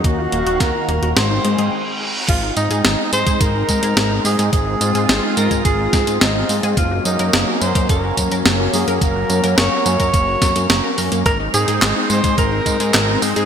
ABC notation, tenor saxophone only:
X:1
M:4/4
L:1/16
Q:1/4=107
K:Abmix
V:1 name="Tenor saxophone"
G4 B4 c4 z4 | F2 E4 c2 B6 A2 | A6 B2 A4 E3 z | F2 E4 c2 B4 z2 A2 |
B4 d2 d8 z2 | B2 A4 c2 B6 A2 |]